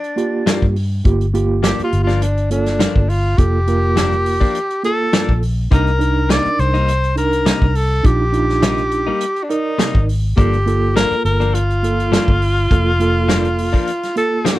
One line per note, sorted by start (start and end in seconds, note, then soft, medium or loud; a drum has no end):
0.00 0.75 D4 medium
0.00 closed hi-hat soft
0.16 0.74 A#3 medium
0.16 0.74 F4 medium
0.16 0.75 G4 medium
0.16 closed hi-hat soft
0.46 0.65 G2 medium
0.46 0.65 F3 medium
0.46 0.65 A#3 medium
0.46 0.65 D4 medium
0.46 snare loud
0.46 closed hi-hat medium
0.62 1.01 G2 medium
0.62 kick medium
0.76 open hi-hat medium
1.04 1.72 G1 medium
1.04 1.24 A#3 medium
1.04 1.25 F4 medium
1.04 1.25 G4 medium
1.04 kick medium
1.04 closed hi-hat medium
1.21 closed hi-hat soft
1.33 2.10 A#3 medium
1.33 2.11 F4 medium
1.33 2.11 G4 medium
1.33 closed hi-hat medium
1.63 1.81 G2 medium
1.63 1.82 F3 medium
1.63 1.82 A#3 medium
1.63 1.82 D4 medium
1.63 1.82 G4 medium
1.63 snare loud
1.63 closed hi-hat medium
1.79 muted fingered electric bass stroke soft
1.79 closed hi-hat soft
1.84 2.01 F4 medium
1.93 2.85 G1 medium
1.93 closed hi-hat medium
2.03 2.24 D4 medium
2.03 2.24 F4 medium
2.08 2.25 F3 soft
2.08 2.25 A#3 soft
2.08 snare soft
2.08 closed hi-hat soft
2.22 2.51 D4 medium
2.22 closed hi-hat medium
2.37 closed hi-hat soft
2.50 3.07 A#3 medium
2.50 3.11 D4 medium
2.50 3.08 F4 medium
2.50 3.08 A4 medium
2.50 closed hi-hat medium
2.66 snare soft
2.66 closed hi-hat soft
2.79 2.98 G2 medium
2.79 2.98 F3 medium
2.79 2.98 A#3 medium
2.79 2.99 D4 medium
2.79 snare loud
2.79 closed hi-hat medium
2.96 3.34 G1 medium
2.96 kick medium
3.09 3.39 F4 medium
3.09 open hi-hat medium
3.38 4.43 F1 medium
3.38 3.58 A#3 medium
3.38 3.58 F4 medium
3.38 4.84 G4 medium
3.38 3.58 A4 medium
3.38 kick loud
3.38 closed hi-hat medium
3.67 4.44 A#3 medium
3.67 4.44 F4 medium
3.67 4.45 A#4 medium
3.67 closed hi-hat medium
3.96 4.15 G2 medium
3.96 4.15 F3 medium
3.96 4.15 A#3 medium
3.96 4.15 D4 medium
3.96 snare medium
3.96 closed hi-hat medium
4.12 closed hi-hat soft
4.26 open hi-hat medium
4.41 4.59 F3 soft
4.41 4.58 A#3 soft
4.41 4.58 D4 medium
4.41 kick medium
4.55 closed hi-hat medium
4.70 closed hi-hat soft
4.83 5.41 A#3 medium
4.83 5.41 F4 medium
4.83 5.41 A4 medium
4.83 5.39 A4 medium
4.83 closed hi-hat medium
5.13 5.31 G2 medium
5.13 5.32 F3 medium
5.13 5.32 A#3 medium
5.13 5.32 D4 medium
5.13 snare loud
5.13 closed hi-hat medium
5.29 5.67 A#1 medium
5.29 kick medium
5.43 open hi-hat medium
5.71 6.38 C2 medium
5.71 5.90 C3 medium
5.71 5.90 G3 medium
5.71 5.90 A#3 medium
5.71 5.91 D4 medium
5.71 5.91 D#4 medium
5.71 5.90 D#4 medium
5.71 5.91 A#4 medium
5.71 6.32 A#4 medium
5.71 kick medium
5.71 closed hi-hat medium
5.87 closed hi-hat soft
5.99 6.76 D4 medium
5.99 6.77 D#4 medium
5.99 6.77 A#4 medium
5.99 closed hi-hat medium
6.29 6.48 C3 medium
6.29 6.48 G3 medium
6.29 6.48 A#3 medium
6.29 6.48 D#4 medium
6.29 6.62 D5 loud
6.29 snare loud
6.29 closed hi-hat medium
6.45 muted fingered electric bass stroke soft
6.45 closed hi-hat soft
6.59 7.51 C2 medium
6.59 7.17 C5 medium
6.59 closed hi-hat medium
6.74 6.92 G3 soft
6.74 6.91 A#3 soft
6.74 6.91 D#4 soft
6.74 closed hi-hat soft
6.88 closed hi-hat medium
7.04 closed hi-hat soft
7.16 7.73 D4 medium
7.16 7.74 D#4 medium
7.16 7.74 A#4 medium
7.16 7.77 A#4 medium
7.16 closed hi-hat medium
7.33 closed hi-hat soft
7.46 7.64 C3 medium
7.46 7.65 G3 medium
7.46 7.65 A#3 medium
7.46 7.65 D#4 medium
7.46 snare loud
7.46 closed hi-hat medium
7.62 8.00 C2 medium
7.62 kick medium
7.75 8.07 A4 medium
7.75 open hi-hat medium
8.03 9.09 A#1 medium
8.03 8.23 D4 medium
8.03 8.24 D#4 medium
8.03 8.24 F4 medium
8.03 9.45 G4 loud
8.03 kick loud
8.03 closed hi-hat medium
8.32 9.10 D4 medium
8.32 9.10 D#4 medium
8.32 9.10 F4 medium
8.32 closed hi-hat medium
8.49 snare soft
8.62 8.81 C3 medium
8.62 8.81 G3 medium
8.62 8.81 A#3 medium
8.62 8.81 D#4 medium
8.62 snare loud
8.62 closed hi-hat medium
8.78 closed hi-hat soft
8.91 closed hi-hat medium
9.07 9.25 G3 soft
9.07 9.24 A#3 medium
9.07 9.24 D#4 medium
9.21 closed hi-hat medium
9.36 closed hi-hat soft
9.43 9.52 D4 medium
9.49 10.07 D#4 medium
9.49 10.11 D#4 medium
9.49 10.07 A#4 medium
9.49 10.07 D5 medium
9.49 closed hi-hat medium
9.79 9.97 C3 medium
9.79 9.97 G3 medium
9.79 9.98 A#3 medium
9.79 9.98 D#4 medium
9.79 snare loud
9.79 closed hi-hat medium
9.95 10.33 G#1 medium
9.95 kick medium
10.09 open hi-hat medium
10.36 11.04 G1 medium
10.36 10.56 G2 medium
10.36 10.56 F3 medium
10.36 10.57 A#3 medium
10.36 10.56 A#3 medium
10.36 10.56 D4 medium
10.36 10.57 F4 medium
10.36 10.92 G4 medium
10.36 10.57 A4 medium
10.36 kick loud
10.36 closed hi-hat medium
10.53 closed hi-hat soft
10.66 11.43 A#3 medium
10.66 11.43 F4 medium
10.66 11.44 A4 medium
10.66 closed hi-hat medium
10.96 11.14 G2 medium
10.96 11.14 F3 medium
10.96 11.14 A#3 medium
10.96 11.15 D4 medium
10.96 11.23 A#4 loud
10.96 snare loud
10.96 closed hi-hat medium
11.11 muted fingered electric bass stroke soft
11.11 closed hi-hat soft
11.25 12.17 G1 medium
11.25 11.56 A#4 medium
11.25 closed hi-hat medium
11.40 11.58 F3 soft
11.40 11.57 A#3 soft
11.40 11.57 D4 soft
11.40 closed hi-hat soft
11.54 14.16 F4 medium
11.54 closed hi-hat medium
11.70 closed hi-hat soft
11.83 12.40 A#3 medium
11.83 12.40 F4 medium
11.83 12.41 A4 medium
11.83 closed hi-hat medium
12.00 closed hi-hat soft
12.12 12.30 G2 medium
12.12 12.31 F3 medium
12.12 12.31 A#3 medium
12.12 12.31 D4 medium
12.12 snare loud
12.12 closed hi-hat medium
12.28 12.66 G1 medium
12.28 kick medium
12.42 open hi-hat medium
12.71 13.75 F1 medium
12.71 12.90 A#3 medium
12.71 12.91 F4 medium
12.71 12.91 A4 medium
12.71 kick loud
12.71 closed hi-hat medium
12.99 13.76 A#3 medium
12.99 13.77 F4 medium
12.99 13.77 A4 medium
12.99 closed hi-hat medium
13.28 13.47 G2 medium
13.28 13.47 F3 medium
13.28 13.47 A#3 medium
13.28 13.47 D4 medium
13.28 snare loud
13.28 closed hi-hat medium
13.45 closed hi-hat soft
13.58 open hi-hat medium
13.73 13.91 F3 soft
13.73 13.90 A#3 medium
13.73 13.90 D4 medium
13.73 kick medium
13.87 closed hi-hat medium
14.03 snare soft
14.03 closed hi-hat soft
14.16 14.59 A#3 medium
14.16 14.59 F4 medium
14.16 14.59 A4 medium
14.16 closed hi-hat medium
14.45 14.59 G2 medium
14.45 14.59 F3 medium
14.45 14.59 A#3 medium
14.45 14.59 D4 medium
14.45 snare medium
14.45 closed hi-hat medium